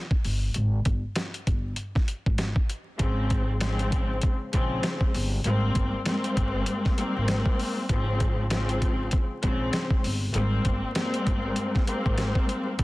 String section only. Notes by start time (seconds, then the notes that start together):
2.98 G#2 C#3 F3 C4
3.59 G#2 C#3 F3 C4
4.52 G#2 C#3 F3 C4
5.44 G#2 G3 A#3 C4
6.05 G3 G#3 A#3 C4
6.96 G#2 G3 A#3 C4
7.88 G#2 C#3 F3 C4
8.49 G#2 C#3 F3 C4
9.42 G#2 C#3 F3 C4
10.33 G#2 G3 A#3 C4
10.95 G3 G#3 A#3 C4
11.86 G#2 G3 A#3 C4
12.77 G#2 C#3 F3 C4